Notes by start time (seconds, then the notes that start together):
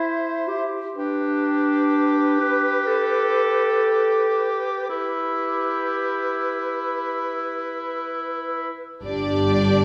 Already playing: E4 C5 E5
0.48 G4
0.95 D4 G4 B4
2.39 B4
2.87 A4
4.89 E4 G4 B4
9.04 G1 G2 D4 G4 D5